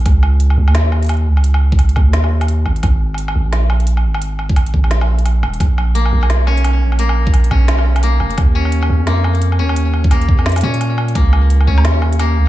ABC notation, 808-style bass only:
X:1
M:4/4
L:1/16
Q:"Swing 16ths" 1/4=173
K:Dbmix
V:1 name="808-style bass" clef=bass
D,,6 D,, E,,6- E,, D,,2- | D,,6 D,, E,,6- E,, A,,,2 | A,,,6 A,,, B,,,6- B,,, A,,,2- | A,,,6 A,,, B,,,6- B,,, E,,,2 |
B,,,6 B,,, C,,6- C,, B,,,2- | B,,,6 B,,, C,,6- C,, F,,,2 | E,,6 E,, F,,6- F,, E,,2- | E,,6 E,, F,,3 B,,6 |
D,,6 D,, E,,6- E,, D,,2 |]